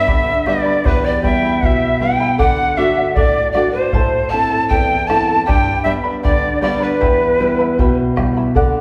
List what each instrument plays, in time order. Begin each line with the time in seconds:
Already playing: nylon-string guitar G3 B3 D4, quena E5, pan flute E5
0.07 nylon-string guitar D3, charango B4 D5 G5 B5, bombo low
0.46 nylon-string guitar G3 B3 D4, charango B4 D5 G5 B5, quena D5, pan flute D5, bombo rim
0.65 charango B4 D5 B5
0.84 nylon-string guitar E2, charango E4 G4 E5 G5 B5, quena B4, pan flute B4, bombo low
1.05 quena D5, pan flute D5
1.22 nylon-string guitar G3 B3 E4, charango E4 E5 G5 B5, pan flute E5, quena G5, bombo low
1.42 charango E4 E5 B5
1.61 nylon-string guitar B2, charango E4 E5 G5 B5, pan flute E5, quena F#5, bombo low
1.66 quena E5
1.99 nylon-string guitar G3 B3 E4, charango E4 E5 G5 B5, quena G5, pan flute G5
2.20 charango E4 E5 B5
2.38 nylon-string guitar D3, charango A4 D5 F#5, pan flute F#5, quena G5, bombo low
2.43 quena F#5
2.76 nylon-string guitar A3 D4 F#4, charango A4 D5 F#5, pan flute E5, quena E5
2.97 charango D5 F#5
3.14 nylon-string guitar A2, charango A4 D5 F#5, quena D5, pan flute D5, bombo low
3.52 nylon-string guitar A3 D4 F#4, charango A4, pan flute D5, quena D5, bombo rim
3.57 charango D5 F#5
3.72 pan flute C5, quena C5, charango D5 F#5
3.93 nylon-string guitar A2, charango E4 A4 C5 E5 A5, bombo low
4.29 nylon-string guitar A3, charango E4 A4 E5 A5, pan flute A5, quena A5
4.34 nylon-string guitar C4 E4
4.51 charango E4 A4 A5
4.68 nylon-string guitar E2, charango E4 A4 E5 A5, pan flute G5, quena G5, bombo low
5.07 nylon-string guitar A3 C4 E4, charango E4 A4 E5 A5, pan flute A5, quena A5, bombo rim
5.28 charango E4 A4 A5
5.45 nylon-string guitar G2, charango G4 B4 D5 G5 B5, pan flute G5, quena A5, bombo low
5.49 quena G5
5.84 nylon-string guitar G3 B3 D4, charango B4 D5 G5 B5, quena E5, pan flute E5
6.04 charango B4 D5 B5
6.23 nylon-string guitar D3, charango B4 D5 G5 B5, quena D5, pan flute D5, bombo low
6.61 nylon-string guitar G3 B3 D4, charango B4 D5 G5 B5, pan flute D5, quena D5, bombo rim
6.80 charango B4 D5 B5, pan flute B4, quena B4
7.01 nylon-string guitar E2, charango E4 B4 E5 G5 B5, bombo low
7.40 nylon-string guitar G3 B3 E4, charango E4 E5 G5 B5
7.59 charango E4 E5 B5
7.78 nylon-string guitar B2, charango E4 E5 G5 B5, bombo low
8.16 nylon-string guitar G3 B3 E4, charango E4 E5 G5 B5, bombo rim, bombo low
8.37 charango E4 E5 B5
8.55 nylon-string guitar D3, charango A4 D5 F#5, bombo low